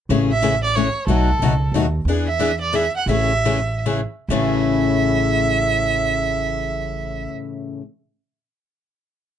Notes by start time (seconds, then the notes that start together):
0.09 A1 C#3 E3 A3 C#4 G#4
0.32 E5
0.42 C#3 E3 A3 C#4 G#4
0.64 D5
0.76 C#3 E3 A3 C#4 G#4 C#5
1.07 B1 B2 F#3 A3 D#4 F#4 A4
1.39 C#2 B2 F#3 A3 D#4 F#4
1.72 D#2 B2 F#3 A3 D#4 F#4
2.05 E2 E3 B3 G#4
2.09 D4
2.28 E5
2.39 E3 B3 D4 G#4
2.62 D5
2.73 E3 B3 D4 G#4 E5
2.97 F#5
3.06 A1 C#3 E3 A3 C#4 G#4
3.11 E5
3.45 C#3 E3 A3 C#4 G#4
3.86 C#3 E3 A3 C#4 G#4
4.28 A1 A2 C#3 E3 A3 C#4 E5
4.32 G#4